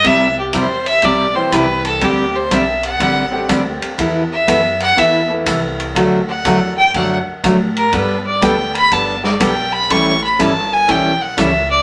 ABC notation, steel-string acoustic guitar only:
X:1
M:4/4
L:1/8
Q:"Swing" 1/4=122
K:Dmix
V:1 name="Steel-string acoustic guitar"
[C,G,CEG] z [C,G,CEG] z [C,G,CEG] z [C,G,CEG] z | [D,G,CDG] z [D,G,CDG] z [D,G,CDG] z [D,G,CDG] z | [E,B,EA] z [E,B,EA] z [E,B,EA] z [E,B,EA] z | [D,F,A,DF] z [D,F,A,DF] z [D,F,A,DF] z [D,F,A,DF] z |
[G,B,DA] z [G,B,DA] z [G,B,DA] z [G,B,DA] z | [E,G,^CEA] z [E,G,CEA] z [E,G,CEA] z [E,G,CEA] z |]